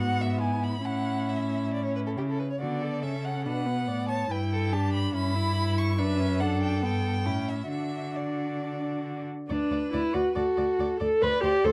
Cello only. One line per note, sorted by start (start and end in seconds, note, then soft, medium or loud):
0.00 0.82 G#2 soft
0.84 2.18 A2 soft
2.16 2.40 C#3 soft
2.60 3.04 D3 soft
3.03 3.47 C#3 soft
3.46 3.90 B2 soft
3.88 4.30 A2 soft
4.30 5.12 G2 medium
5.14 6.01 G2 medium
5.99 6.85 F#2 medium
6.84 7.28 G2 medium
7.26 7.70 A2 soft
7.71 9.26 D3 soft
9.50 9.58 D2 soft
9.71 9.79 D2 soft
9.94 10.02 D2 medium
10.15 10.23 D2 soft
10.36 10.44 D2 soft
10.58 10.66 D2 soft
10.80 10.88 D2 soft
11.01 11.09 D2 medium
11.22 11.30 D2 medium
11.44 11.52 D2 medium
11.65 11.72 D2 medium